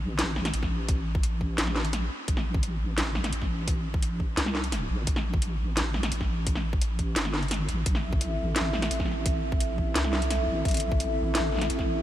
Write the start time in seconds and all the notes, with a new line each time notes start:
Already playing: A1
0.19 snare, closed hi-hat
0.36 snare
0.45 snare, closed hi-hat
0.54 A1, closed hi-hat
0.63 kick, snare
0.89 kick, closed hi-hat
1.15 kick
1.23 closed hi-hat
1.41 kick
1.58 A1, snare, closed hi-hat
1.67 snare
1.76 snare
1.85 closed hi-hat
1.93 snare, closed hi-hat
2.28 A1, kick, closed hi-hat
2.37 snare
2.54 kick
2.63 closed hi-hat
2.98 snare, closed hi-hat
3.15 snare
3.24 snare, closed hi-hat
3.33 A1, closed hi-hat
3.42 kick, snare
3.68 kick, closed hi-hat
3.94 kick
4.03 closed hi-hat
4.20 kick
4.37 C2, snare, closed hi-hat
4.46 snare
4.55 snare
4.64 closed hi-hat
4.72 snare, closed hi-hat
4.90 A1
5.07 A1, kick, closed hi-hat
5.16 snare
5.34 kick
5.42 closed hi-hat
5.77 snare, closed hi-hat
5.94 snare
6.03 snare, closed hi-hat
6.12 A1, closed hi-hat
6.21 kick, snare
6.47 kick, closed hi-hat
6.55 snare
6.73 kick
6.82 closed hi-hat
6.99 kick, closed hi-hat
7.16 G1, snare, closed hi-hat
7.25 snare
7.34 snare
7.43 closed hi-hat
7.48 snare, closed hi-hat
7.51 closed hi-hat
7.54 closed hi-hat
7.69 A1, closed hi-hat
7.86 A1 C4 E4 A4 E5, kick, closed hi-hat
7.95 snare
8.13 kick
8.21 closed hi-hat
8.56 snare, closed hi-hat
8.73 snare
8.82 snare, closed hi-hat
8.91 A1, closed hi-hat
9.00 kick, snare
9.06 snare
9.11 snare
9.26 kick, closed hi-hat
9.52 kick
9.60 closed hi-hat
9.78 kick
9.95 C2, snare, closed hi-hat
10.04 snare
10.13 snare
10.22 closed hi-hat
10.31 snare, closed hi-hat
10.48 A1
10.65 A1, kick, closed hi-hat
10.68 closed hi-hat
10.71 closed hi-hat
10.74 closed hi-hat
10.77 closed hi-hat
10.80 closed hi-hat
10.92 kick
11.00 closed hi-hat
11.35 snare, closed hi-hat
11.52 snare
11.55 snare
11.58 snare
11.61 snare, closed hi-hat
11.70 A1, closed hi-hat
11.79 kick, snare